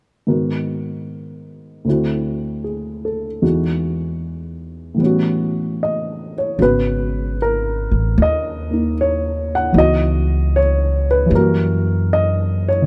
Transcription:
0.27 1.85 G#2 soft
0.27 1.86 D#3 soft
0.27 1.86 B3 soft
0.27 1.86 F#4 soft
0.27 1.86 A#4 soft
1.85 3.42 D2 soft
1.85 3.43 D3 soft
1.85 3.44 C4 soft
1.85 3.44 E4 soft
1.90 3.41 F#4 soft
2.64 3.27 G#4 soft
3.05 3.59 A4 soft
3.42 5.00 E2 soft
3.42 4.96 E3 soft
3.42 5.00 G#3 soft
3.42 5.00 D#4 soft
3.42 5.01 F#4 soft
4.95 6.55 A2 soft
4.95 6.57 E3 soft
4.99 6.58 G3 soft
4.99 6.58 B3 soft
5.03 6.60 C#4 soft
5.03 6.59 F#4 soft
5.83 6.32 D#5 medium
6.38 6.61 C#5 medium
6.59 7.88 G#1 medium
6.59 9.74 C#3 soft
6.59 9.75 G#3 soft
6.59 9.73 B3 soft
6.59 9.75 F#4 soft
6.59 7.36 B4 medium
7.42 8.21 A#4 medium
7.91 8.15 A1 medium
8.18 9.71 D#2 medium
8.22 8.94 D#5 medium
8.70 9.74 A#3 soft
8.70 9.74 D#4 soft
9.01 9.54 C#5 medium
9.55 9.78 F#5 medium
9.72 11.27 C#2 medium
9.72 11.25 E3 soft
9.72 11.31 B3 soft
9.72 11.31 D#4 soft
9.78 11.33 F#4 soft
9.78 10.57 D#5 medium
10.56 11.05 C#5 medium
11.11 11.34 B4 medium
11.26 12.85 E3 soft
11.26 12.86 G3 soft
11.31 12.84 F#2 medium
11.31 12.86 A#3 soft
11.35 12.86 F#4 soft
11.35 12.07 A#4 medium
12.13 12.67 D#5 medium
12.68 12.86 C#5 medium
12.82 12.86 D#3 soft

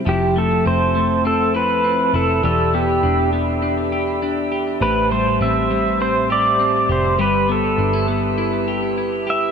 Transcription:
0.00 0.12 G3 medium
0.00 0.65 C4 soft
0.05 0.63 F1 loud
0.05 2.41 F3 medium
0.05 2.43 F3 medium
0.05 2.41 C4 medium
0.05 1.54 E4 medium
0.05 9.52 E5 medium
0.05 2.41 A5 medium
0.09 0.38 G4 medium
0.36 0.94 A3 medium
0.36 0.67 A4 medium
0.65 2.10 F1 medium
0.65 1.24 C4 medium
0.65 1.26 C5 loud
0.95 2.50 A3 medium
1.25 1.83 C4 medium
1.25 1.56 A4 loud
1.54 2.14 E4 medium
1.54 2.15 B4 loud
1.84 2.50 C4 medium
2.14 2.42 F1 medium
2.14 2.44 E4 medium
2.14 2.44 A4 medium
2.43 3.00 E1 loud
2.43 5.94 E3 medium
2.43 7.15 G4 medium
2.43 3.92 G4 medium
2.43 2.75 A4 medium
2.43 4.79 D5 medium
2.43 4.79 B5 medium
2.74 3.32 B3 medium
2.74 3.29 G4 medium
3.03 4.77 E1 medium
3.03 3.61 D4 medium
3.33 4.87 B3 medium
3.62 4.21 D4 medium
3.92 4.51 G4 medium
4.22 4.87 D4 medium
4.52 4.81 G4 medium
4.80 5.38 A1 loud
4.80 7.19 A2 medium
4.80 6.30 G4 medium
4.80 5.11 B4 medium
4.80 7.16 C5 medium
4.80 7.16 A5 medium
5.11 5.70 G3 medium
5.11 5.39 C5 loud
5.41 6.85 A1 medium
5.41 5.99 C4 medium
5.41 6.03 E5 loud
5.71 7.19 G3 medium
6.00 6.58 C4 medium
6.00 6.31 C5 loud
6.30 6.89 G4 medium
6.30 6.92 D5 loud
6.60 7.25 C4 medium
6.89 7.19 F1 medium
6.89 7.19 G4 medium
6.89 7.21 C5 medium
7.18 7.75 G1 loud
7.18 9.52 G3 medium
7.18 9.52 G4 medium
7.18 8.67 G4 medium
7.18 9.52 B4 medium
7.18 7.51 B4 medium
7.18 9.52 B5 medium
7.49 8.07 B3 medium
7.49 8.05 A4 medium
7.78 9.52 G1 medium
7.78 7.93 D4 medium
7.93 8.37 E4 medium
8.08 9.52 B3 medium
8.38 8.97 E4 medium
8.68 9.26 G4 medium
8.98 9.52 E4 medium
9.27 9.52 G4 medium
9.27 9.52 E5 medium

